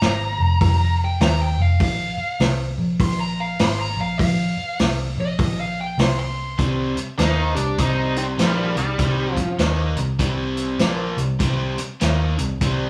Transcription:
Already playing: lead electric guitar A#5
0.01 picked electric bass G#1, snare, open hi-hat
0.38 picked electric bass F1
0.61 picked electric bass F1, kick, open hi-hat
1.05 lead electric guitar G5
1.20 picked electric bass D#2, lead electric guitar A#5, snare, open hi-hat
1.41 lead electric guitar G5
1.58 picked electric bass F1, lead electric guitar F5
1.80 picked electric bass A#1, lead electric guitar F5, kick, open hi-hat
2.18 muted picked electric bass stroke
2.40 picked electric bass C2, snare, open hi-hat
2.78 picked electric bass A#1
3.00 picked electric bass A#1, lead electric guitar C6, kick, open hi-hat
3.20 lead electric guitar A#5
3.40 lead electric guitar F5
3.59 picked electric bass G#1, lead electric guitar C6, snare, open hi-hat
3.81 lead electric guitar A#5
3.97 picked electric bass A#1, lead electric guitar F5
4.19 picked electric bass A#1, lead electric guitar F5, kick, open hi-hat
4.57 muted picked electric bass stroke
4.79 picked electric bass C2, snare, open hi-hat
5.17 picked electric bass A#1, lead electric guitar D#5
5.39 picked electric bass A#1, kick, open hi-hat
5.60 lead electric guitar F5
5.81 lead electric guitar G5
5.98 picked electric bass C2, lead electric guitar C6, snare, open hi-hat
6.20 lead electric guitar C6
6.58 picked electric bass C2, overdriven electric guitar C3 G3 C4, kick, closed hi-hat
6.97 muted picked electric bass stroke, muted overdriven electric guitar stroke, closed hi-hat
7.18 picked electric bass D#2, overdriven electric guitar D#3 A#3 D#4, lead electric guitar D#4 C5, snare, closed hi-hat
7.55 picked electric bass C2, overdriven electric guitar C3 G3, lead electric guitar D4 G4, closed hi-hat
7.78 picked electric bass C2, overdriven electric guitar C3 G3 C4, lead electric guitar D#4 C5, kick, closed hi-hat
8.16 lead electric guitar C4 D#4, closed hi-hat
8.38 picked electric bass A#1, overdriven electric guitar A#2 F3 A#3, lead electric guitar G3 D#4, snare, closed hi-hat
8.76 picked electric bass C2, overdriven electric guitar C3 G3, lead electric guitar G3 D#4, closed hi-hat
8.98 picked electric bass C2, overdriven electric guitar C3 G3 C4, kick, closed hi-hat
9.34 lead electric guitar F3 C#4, muted overdriven electric guitar stroke, kick, closed hi-hat
9.59 picked electric bass D#2, overdriven electric guitar D#3 A#3 D#4, snare, closed hi-hat
9.96 picked electric bass C2, overdriven electric guitar C3 G3, closed hi-hat
10.19 picked electric bass C2, overdriven electric guitar C3 G3 C4, kick, closed hi-hat
10.57 closed hi-hat
10.79 picked electric bass A#1, overdriven electric guitar A#2 F3 A#3, snare, closed hi-hat
11.18 picked electric bass C2, overdriven electric guitar C3 G3, closed hi-hat
11.39 picked electric bass C2, overdriven electric guitar C3 G3 C4, kick, closed hi-hat
11.78 muted overdriven electric guitar stroke, closed hi-hat
12.00 picked electric bass D#2, overdriven electric guitar D#3 A#3 D#4, snare, closed hi-hat
12.38 picked electric bass C2, overdriven electric guitar C3 G3, closed hi-hat
12.61 picked electric bass C2, overdriven electric guitar C3 G3 C4, kick, closed hi-hat

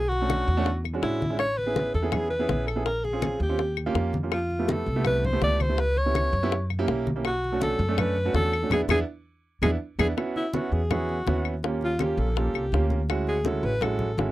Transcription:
Already playing: upright bass B1
0.08 alto saxophone F#4, high bongo, high conga
0.21 grand piano A3 C#4 D4 F#4
0.30 high bongo, high conga, claves
0.48 upright bass E2, high conga
0.57 grand piano A3 C#4 D4 F#4
0.66 high bongo, high conga
0.84 high bongo, high conga, claves
0.93 grand piano G#3 C#4 D4 F#4
1.02 upright bass A1, alto saxophone E4, high bongo, low bongo, high conga
1.21 high bongo, high conga
1.30 grand piano G#3 C#4 D4 E4
1.39 alto saxophone C#5, high bongo, high conga, claves
1.58 alto saxophone B4, high conga
1.66 grand piano B3 C#4 E4 G#4
1.76 high bongo, high conga
1.94 upright bass E2, alto saxophone A4, high conga
2.02 grand piano B3 C#4 E4 G#4
2.12 alto saxophone G#4, high bongo, high conga, low conga, claves
2.30 alto saxophone B4, high conga
2.39 grand piano B3 C#4 E4 G#4
2.49 upright bass A#1, high bongo, low bongo, high conga
2.67 alto saxophone A4, claves
2.76 grand piano B3 C#4 E4 G#4
2.86 alto saxophone A#4, high bongo, high conga
3.04 alto saxophone G#4, high bongo, high conga
3.13 grand piano C4 C#4 F4 G#4
3.22 high bongo, high conga, claves
3.40 upright bass D#2, alto saxophone G4, high conga
3.49 grand piano C4 C#4 F4 G4
3.59 high bongo, high conga
3.77 high bongo, high conga, claves
3.86 grand piano A#3 C#4 F4 G4
3.95 upright bass F2, high bongo, low bongo, high conga
4.13 high bongo, high conga
4.23 grand piano A#3 C#4 F4 G4
4.32 alto saxophone F4, high bongo, high conga, claves
4.51 high conga
4.59 grand piano A3 B3 E4 G4
4.68 alto saxophone A4, high bongo, high conga
4.86 upright bass C2, high conga
4.96 grand piano A3 B3 E4 G4
5.04 alto saxophone B4, high bongo, high conga, low conga, claves
5.25 alto saxophone C5, high conga, low conga
5.33 grand piano A3 B3 E4 G4
5.42 upright bass C#2, alto saxophone D5, high bongo, low bongo, high conga
5.60 alto saxophone C5, high conga, claves
5.69 grand piano A3 B3 E4 G4
5.78 alto saxophone B4, high bongo, high conga
5.97 alto saxophone C#5, high bongo, high conga
6.06 grand piano B3 C#4 E4 G4
6.15 high bongo, high conga, claves
6.33 upright bass F#2, high conga
6.43 grand piano B3 C#4 E4 G4
6.52 high bongo, high conga
6.70 high bongo, high conga, claves
6.79 grand piano A#3 C#4 E4 G4
6.88 upright bass B1, high bongo, low bongo, high conga
7.06 high bongo, high conga
7.16 grand piano A#3 C#4 E4 G4
7.25 alto saxophone F#4, high bongo, high conga, claves
7.44 high conga
7.52 grand piano A3 C#4 D4 F#4
7.61 alto saxophone A4, high bongo, high conga
7.79 upright bass F#2, high conga
7.88 grand piano A3 C#4 D4 A4
7.98 alto saxophone B4, high bongo, high conga, low conga, claves
8.17 high conga
8.25 grand piano A3 C#4 D4 F#4
8.34 upright bass E2, alto saxophone A4, high bongo, low bongo, high conga
8.53 claves
8.62 grand piano A3 C#4 D4 F#4
8.70 upright bass E2, grand piano B3 D4 E4, alto saxophone G#4, high bongo, low conga, claves
8.88 upright bass E2, grand piano B3 D4 E4, alto saxophone G#4, high bongo, low conga, claves
9.62 upright bass E2, grand piano B3 D4 E4, alto saxophone G#4, high bongo, low conga, claves
9.99 upright bass E2, grand piano B3 D4 E4, alto saxophone G#4, high bongo, low conga, claves
10.17 grand piano B3 C#4 E4 F#4, high bongo, high conga, claves
10.36 alto saxophone E4, high conga
10.54 grand piano B3 C#4 E4 F#4, alto saxophone F#4, high bongo, high conga
10.72 upright bass E2, alto saxophone G#4, high conga
10.91 grand piano B3 C#4 E4 G#4, alto saxophone F#4, high bongo, high conga, low conga, claves
11.09 high conga
11.27 upright bass D#2, grand piano B3 C#4 E4 F#4, high bongo, low bongo, high conga
11.45 claves
11.63 grand piano A#3 C#4 F4 G4, high bongo, high conga
11.81 alto saxophone F4, high bongo, high conga
11.99 grand piano A#3 C#4 F4 G4, alto saxophone G4, high bongo, high conga, claves
12.17 upright bass A#1, alto saxophone A4, high conga
12.36 grand piano A#3 C#4 F4 A4, alto saxophone G4, high bongo, high conga
12.54 upright bass C2, high bongo, high conga, claves
12.72 upright bass D2, grand piano A#3 C#4 F4 G4, high bongo, low bongo, high conga
12.90 high bongo, high conga
13.09 grand piano G#3 C#4 E4 F#4, high bongo, high conga, claves
13.27 alto saxophone G#4, high conga
13.45 grand piano G#3 C#4 E4 F#4, alto saxophone A4, high bongo, high conga
13.63 upright bass A1, alto saxophone B4, high conga
13.81 grand piano G#3 C#4 E4 F#4, alto saxophone A4, high bongo, high conga, low conga, claves
13.99 high conga, low conga
14.17 upright bass G#1, grand piano G#3 C#4 E4 F#4, high bongo, low bongo, high conga

